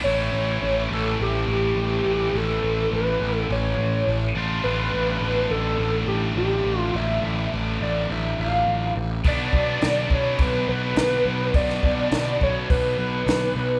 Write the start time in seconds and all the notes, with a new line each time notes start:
0.02 A1 A2 E3 A3 C#4 E4 C#5
0.33 A1
0.62 A1
0.91 A1 A4
1.20 A1 G4
1.47 A1
1.52 G4
1.76 A1
2.05 A1
2.34 A1 A4
2.63 A1
2.92 A1 B4
3.20 A1
3.36 A4
3.49 A1 C#5
3.77 A1
4.07 A1
4.35 A1 A2 D3 A3 D4 F4
4.63 A1 B4
4.93 A1
5.21 A1
5.50 A1 A4
5.79 A1
6.06 A1 G4
6.36 A1 G4
6.65 A1
6.79 F4
6.94 A1 E5
7.22 A1
7.52 A1
7.81 A1 D5
8.09 A1 E5
8.38 A1 F5
8.67 A1
8.96 A1
9.24 B1 B2 F#3 B3 D4 D5, kick, open hi-hat
9.53 B1, kick
9.82 B1, snare, open hi-hat
10.10 B1 C#5, kick
10.39 B1 B4, kick, open hi-hat
10.68 B1 B4
10.96 B1, snare, open hi-hat
11.25 B1
11.54 B1 D5, kick, open hi-hat
11.70 snare
11.83 B1, kick
12.12 B1, snare, open hi-hat
12.41 B1 C#5, kick
12.70 B1 B4, kick, open hi-hat
12.98 B1 B4
13.26 B1, snare, open hi-hat
13.55 B1